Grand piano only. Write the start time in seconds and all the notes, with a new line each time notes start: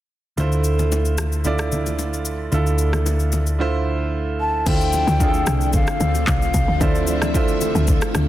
0.37 D3 A3 E4 F4 C5
1.44 D3 A3 E4 F4 D5
2.52 D3 A3 E4 F4 A4
3.59 D3 A3 E4 F4 C5
4.66 D3 A3 E4 F4 C5
5.19 D3 A3 D4 F4 G#4
5.28 A4
6.80 D3 A3 E4 F4 C5
7.34 D3 A3 E4 F4 C5